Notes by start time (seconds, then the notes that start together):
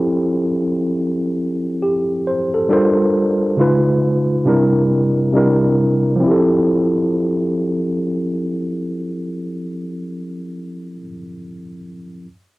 Already playing: F3 C4 E4 G4 A4
1.82 G4
2.27 C5
2.54 A4
2.69 G3 D4 F4 A4 A#4 C5
3.57 C#3 G#3 D#4 F4
3.61 B4
4.45 C3 G3 D4 E4 A#4
5.33 C3 G3 D4 E4 A#4
6.16 F3
6.20 C4 E4
6.27 G4 A4